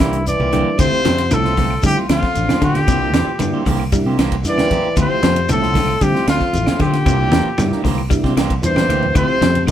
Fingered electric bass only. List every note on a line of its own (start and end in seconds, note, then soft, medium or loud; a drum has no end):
0.00 0.35 C2 medium
0.40 0.63 C2 medium
0.79 0.90 D2 loud
0.93 muted fingered electric bass stroke soft
1.06 1.28 F2 loud
1.31 1.77 C2 loud
1.83 1.95 D3 medium
2.09 2.21 D2 medium
2.36 2.47 A1 medium
2.49 muted fingered electric bass stroke soft
2.62 2.85 D3 medium
2.88 3.14 C2 loud
3.14 3.26 E2 loud
3.27 muted fingered electric bass stroke soft
3.40 3.52 G2 loud
3.66 4.01 C2 medium
4.06 4.17 C3 loud
4.19 4.42 C2 loud
4.97 5.08 D2 loud
5.10 muted fingered electric bass stroke soft
5.23 5.46 F2 loud
5.49 5.95 C2 medium
6.01 6.13 D3 medium
6.28 6.39 D2 loud
6.54 6.66 A1 medium
6.67 muted fingered electric bass stroke soft
6.80 7.03 D3 loud
7.06 7.32 C2 loud
7.32 7.44 E2 loud
7.46 muted fingered electric bass stroke soft
7.58 7.70 G2 loud
7.85 8.19 C2 loud
8.24 8.35 C3 medium
8.37 8.60 C2 loud
8.63 8.86 E2 medium
8.89 9.12 D2 medium
9.15 9.27 D2 loud
9.29 muted fingered electric bass stroke soft
9.41 9.64 F2 loud
9.67 9.71 C2 loud